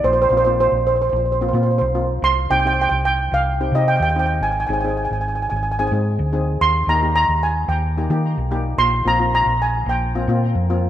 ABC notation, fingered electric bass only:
X:1
M:4/4
L:1/16
Q:1/4=110
K:Bbmix
V:1 name="Fingered electric bass" clef=bass
B,,,2 B,,,3 B,,,3 B,,,3 B,,2 _C,,3 | C,,2 C,,3 C,,3 C,,3 C,2 E,,3 | A,,,2 A,,,3 A,,,3 A,,,3 A,,2 D,,3 | E,,2 E,,3 E,,3 E,,3 E,2 _C,,3 |
B,,,2 B,,,3 B,,,3 B,,,3 B,,2 F,,3 |]